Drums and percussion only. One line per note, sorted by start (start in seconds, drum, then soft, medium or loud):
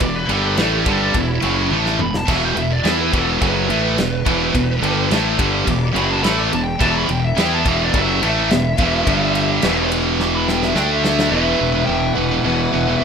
0.00 kick medium
0.00 ride loud
0.29 ride medium
0.57 snare loud
0.57 ride loud
0.86 kick loud
0.86 ride medium
1.14 kick medium
1.14 ride loud
1.42 ride medium
1.71 high tom medium
1.86 snare medium
1.99 mid tom medium
2.14 snare loud
2.28 kick loud
2.28 crash loud
2.57 ride medium
2.85 snare loud
2.85 ride loud
3.13 kick loud
3.13 ride medium
3.42 kick loud
3.42 ride medium
3.70 ride medium
3.98 snare loud
3.98 ride loud
4.26 kick loud
4.26 ride medium
4.55 kick medium
4.55 ride loud
4.83 ride medium
5.11 snare loud
5.11 ride loud
5.39 kick loud
5.39 ride medium
5.67 kick medium
5.67 ride loud
5.96 ride medium
6.24 snare loud
6.24 ride loud
6.53 ride medium
6.81 kick loud
6.81 ride loud
7.09 ride medium
7.38 snare loud
7.38 ride loud
7.66 kick loud
7.66 ride medium
7.94 kick loud
7.94 ride loud
8.23 ride medium
8.51 snare loud
8.51 ride medium
8.78 kick loud
8.78 ride medium
9.07 kick loud
9.07 ride loud
9.35 ride medium
9.62 snare loud
9.62 ride loud
9.92 ride medium
10.20 snare medium
10.48 snare medium
10.63 snare medium
10.76 snare medium
11.05 snare loud
11.19 snare loud